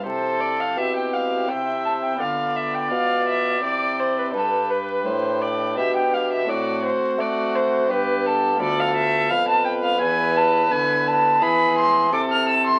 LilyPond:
<<
  \new Staff \with { instrumentName = "Violin" } { \time 3/4 \key c \major \tempo 4 = 84 c''8 d''16 f''16 e''16 g''16 f''8 g''8 a''16 g''16 | f''8 e''16 g''16 f''8 e''8 d''8 c''16 b'16 | a'8 b'8 c''8 d''8 e''16 g''16 f''16 e''16 | d''8 c''8 d''8 c''8 b'8 a'8 |
\key e \phrygian d''16 f''16 e''8 f''16 a''16 g''16 f''16 gis''8 a''8 | gis''8 a''8 b''8 c'''8 d'''16 f'''16 e'''16 c'''16 | }
  \new Staff \with { instrumentName = "Violin" } { \time 3/4 \key c \major a'4 g'4 e''4 | d''2. | b'2 g'4 | fis'4 fis'4 g'4 |
\key e \phrygian a'4 b'2~ | b'4 gis'4 a'4 | }
  \new Staff \with { instrumentName = "Pipe organ" } { \time 3/4 \key c \major <c' e' g'>2. | <b f'>2 <c' e' g'>4 | <d' g'>2. | <a c' fis'>2 <b d' g'>4 |
\key e \phrygian <b f' b'>2 <b e' b'>4 | <b e' b'>2 <c' e' a'>4 | }
  \new Staff \with { instrumentName = "Pipe organ" } { \clef bass \time 3/4 \key c \major c4 b,4 c4 | d4 b,4 c4 | g,4 a,4 b,4 | a,8 r8 a4 g,4 |
\key e \phrygian d,4 f,4 e,4 | d4 e4 c4 | }
  \new Staff \with { instrumentName = "Bassoon" } { \clef bass \time 3/4 \key c \major c4 b,4 c4 | d4 b,4 c4 | g,4 a,4 b,4 | a,8 r8 a4 g,4 |
\key e \phrygian d,4 f,4 e,4 | d4 e4 c4 | }
>>